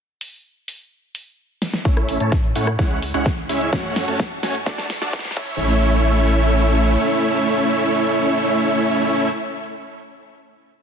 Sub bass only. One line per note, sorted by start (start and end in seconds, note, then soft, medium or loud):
1.85 2.18 A1 medium
2.20 2.53 A2 loud
2.56 2.77 A2 medium
2.79 3.12 C#2 medium
3.14 3.47 C#2 loud
3.49 3.70 C#2 loud
3.73 4.06 F#2 medium
4.08 4.41 F#2 loud
4.43 4.64 F#2 loud
4.66 4.99 D2 loud
5.02 5.34 D2 loud
5.37 6.97 A1 loud